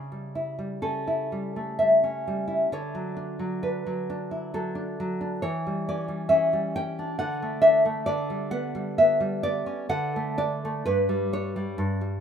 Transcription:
0.00 2.66 C#3 medium
0.12 0.57 G3 soft
0.35 1.06 E4 soft
0.59 1.31 G3 soft
0.82 2.02 C#4 soft
0.82 1.76 A4 medium
1.07 2.46 E4 soft
1.32 1.79 G3 soft
1.56 2.72 A3 soft
1.79 2.26 G3 soft
1.79 2.67 E5 medium
2.04 2.72 C#4 soft
2.27 2.72 G3 soft
2.48 2.71 E4 soft
2.72 5.39 D3 medium
2.72 3.58 C#5 medium
2.95 3.38 F#3 soft
3.17 3.62 D4 medium
3.39 3.85 F#3 soft
3.63 4.08 D4 soft
3.63 4.31 B4 medium
3.86 4.53 F#3 soft
4.10 4.74 D4 medium
4.31 5.42 E4 soft
4.54 4.99 F#3 medium
4.54 5.41 A4 medium
4.75 5.20 D4 soft
5.00 5.43 F#3 medium
5.21 5.43 D4 soft
5.42 7.15 E3 medium
5.42 5.85 C#5 medium
5.67 6.07 G3 soft
5.89 6.29 C#4 medium
5.89 6.29 D5 medium
6.08 6.52 G3 medium
6.29 6.75 C#4 medium
6.29 6.72 E5 medium
6.53 7.19 G3 medium
6.76 7.20 C#4 medium
6.76 7.18 G5 medium
6.99 7.19 D4 soft
7.19 8.04 D3 medium
7.19 7.61 F#5 medium
7.42 7.84 A3 medium
7.62 8.07 D4 medium
7.62 8.04 E5 medium
7.85 8.07 A3 medium
8.06 9.66 D3 medium
8.06 8.49 D5 loud
8.30 8.74 G3 medium
8.51 8.97 B3 medium
8.51 8.95 F#5 medium
8.75 9.19 G3 medium
8.98 9.43 B3 medium
8.98 9.42 E5 medium
9.20 9.90 G3 medium
9.43 9.91 B3 medium
9.43 9.88 D5 loud
9.66 9.89 C#4 soft
9.89 10.82 D3 medium
9.89 10.35 F#5 loud
10.16 10.64 A3 medium
10.38 10.85 D4 medium
10.38 10.83 D5 medium
10.65 10.87 A3 medium
10.86 11.77 G2 medium
10.86 11.31 B4 medium
11.09 11.55 G3 medium
11.33 11.80 D4 medium
11.33 12.20 C#5 medium
11.56 11.79 G3 medium
11.78 12.20 G2 medium
12.01 12.20 G3 medium

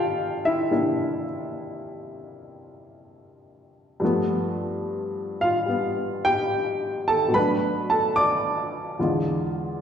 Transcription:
0.00 0.69 C3 medium
0.00 0.70 A#3 soft
0.00 0.71 C4 soft
0.00 0.70 D4 soft
0.00 4.03 F4 medium
0.00 4.04 G4 medium
0.00 4.03 A4 medium
0.00 4.03 F5 medium
0.00 4.03 G5 medium
0.00 4.04 A5 medium
0.45 0.71 E4 medium
0.45 1.23 E5 medium
0.71 4.02 C3 soft
0.71 4.02 A#3 soft
0.71 4.02 D4 soft
0.71 4.02 E4 medium
4.00 7.32 G2 medium
4.00 7.32 F3 soft
4.00 7.33 A3 medium
4.05 5.68 B3 medium
5.41 6.21 F4 medium
5.41 6.20 F5 medium
5.66 7.32 G3 soft
5.66 7.33 B3 soft
6.25 7.03 G4 medium
6.25 7.09 G5 loud
7.08 7.32 A4 medium
7.08 7.31 A5 medium
7.28 8.96 B2 soft
7.28 8.98 F#3 soft
7.34 8.99 A3 soft
7.34 7.86 B4 medium
7.34 7.91 B5 medium
7.39 9.01 D4 medium
7.90 8.15 A4 medium
7.90 8.16 A5 medium
8.16 9.81 D5 medium
8.16 9.81 D6 medium
8.99 9.81 E2 soft
8.99 9.81 D3 soft
8.99 9.81 G#3 soft
8.99 9.81 F4 medium

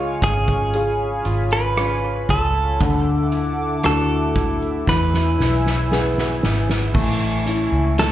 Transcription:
0.00 0.18 C#2 medium
0.00 2.77 C#3 medium
0.00 2.81 C#3 medium
0.00 0.74 G#3 medium
0.00 0.21 C#4 medium
0.00 0.71 C#4 soft
0.00 0.23 F4 medium
0.00 0.71 F4 soft
0.00 0.71 G#4 medium
0.00 2.77 C#5 medium
0.00 2.77 F5 medium
0.00 2.77 G#5 medium
0.00 0.72 C#6 medium
0.22 1.22 G#1 medium
0.22 1.75 C#4 medium
0.22 1.52 G#4 medium
0.22 kick medium
0.22 closed hi-hat medium
0.48 kick medium
0.48 closed hi-hat soft
0.74 1.74 C#4 soft
0.74 1.74 F4 soft
0.74 1.74 G#4 medium
0.74 2.79 B5 medium
0.74 closed hi-hat medium
1.25 2.25 G#1 medium
1.25 2.27 F4 medium
1.25 closed hi-hat medium
1.51 2.30 B4 medium
1.51 closed hi-hat soft
1.76 2.91 C#4 medium
1.76 2.78 C#4 soft
1.76 2.78 F4 soft
1.76 cross-stick medium
1.76 closed hi-hat medium
2.29 2.77 C#2 medium
2.29 2.91 F4 medium
2.29 3.85 A4 medium
2.29 kick medium
2.29 closed hi-hat medium
2.80 3.80 D2 medium
2.80 4.98 D3 medium
2.80 4.83 D3 medium
2.80 4.85 A4 medium
2.80 6.90 E5 medium
2.80 4.86 F#5 medium
2.80 4.85 D6 medium
2.80 kick medium
2.80 closed hi-hat medium
3.32 4.35 E4 medium
3.32 closed hi-hat medium
3.83 4.84 D2 medium
3.83 4.97 A3 medium
3.83 4.84 D4 soft
3.83 4.84 E4 soft
3.83 4.85 F#4 medium
3.83 4.89 A4 medium
3.83 cross-stick medium
3.83 closed hi-hat medium
4.35 5.39 E4 medium
4.35 kick medium
4.35 closed hi-hat medium
4.62 closed hi-hat soft
4.87 7.05 E2 medium
4.87 5.36 E2 medium
4.87 6.90 E3 medium
4.87 6.92 B4 medium
4.87 6.39 B4 medium
4.87 6.92 G#5 medium
4.87 6.92 E6 medium
4.87 kick medium
4.87 snare soft
5.14 snare soft
5.39 6.39 B1 medium
5.39 6.42 E4 medium
5.39 snare medium
5.66 snare medium
5.91 7.05 B3 medium
5.91 6.91 B3 soft
5.91 6.91 E4 soft
5.91 6.92 G#4 medium
5.91 snare medium
6.18 snare medium
6.43 6.91 G#1 medium
6.43 8.12 E4 medium
6.43 snare medium
6.70 snare medium
6.94 7.68 A1 loud
6.94 7.96 A3 medium
6.94 8.12 E4 medium
6.94 8.12 E5 medium
6.94 8.12 G#5 medium
6.94 8.12 C#6 medium
6.94 kick loud
6.94 crash medium
7.46 8.12 C#4 medium
7.46 8.12 E4 medium
7.46 hi-hat pedal medium
7.46 open hi-hat medium
7.72 8.12 C#2 medium
7.98 8.12 A3 medium
7.98 8.12 A4 medium
7.98 snare medium
7.98 hi-hat pedal medium
7.98 open hi-hat medium

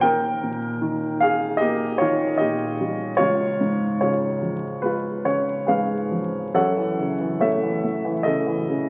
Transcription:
0.01 3.18 D#2 medium
0.01 1.18 A#4 medium
0.01 1.25 G5 medium
0.43 1.98 A#2 soft
0.81 1.99 D#3 soft
1.20 1.59 G#4 medium
1.20 1.62 F5 medium
1.57 1.98 G4 medium
1.57 2.01 D#5 medium
1.61 3.17 A#3 medium
1.98 3.17 D#3 medium
1.98 2.38 F4 medium
1.98 2.41 C#5 medium
2.38 3.19 A#2 soft
2.38 3.17 G4 medium
2.38 3.22 D#5 medium
2.81 3.20 G3 soft
3.17 6.52 C#2 soft
3.17 3.97 F4 medium
3.17 3.99 C#5 medium
3.61 5.21 G#2 soft
4.01 5.23 C#3 soft
4.01 4.81 F4 soft
4.01 4.86 C#5 medium
4.41 6.08 F3 soft
4.82 6.51 G#3 soft
4.82 6.09 F4 soft
4.82 5.65 B4 medium
5.25 6.51 C#3 soft
5.25 5.70 C#5 medium
5.67 6.53 G#2 soft
5.67 6.51 G#4 soft
5.67 6.51 B4 soft
5.67 6.58 F5 medium
6.11 6.54 F3 soft
6.54 8.89 F#2 soft
6.54 7.39 A4 medium
6.54 7.39 C#5 medium
6.54 7.44 F#5 medium
6.77 7.18 E3 soft
6.99 8.25 C#3 soft
7.20 7.62 E3 soft
7.40 7.82 A3 soft
7.40 8.23 A4 soft
7.40 8.89 C#5 soft
7.40 8.28 E5 medium
7.63 8.03 E3 soft
7.83 8.89 A3 soft
8.05 8.45 E3 soft
8.23 8.67 C#3 soft
8.23 8.89 A4 medium
8.23 8.89 D#5 medium
8.47 8.88 E3 soft
8.69 8.89 C#3 soft

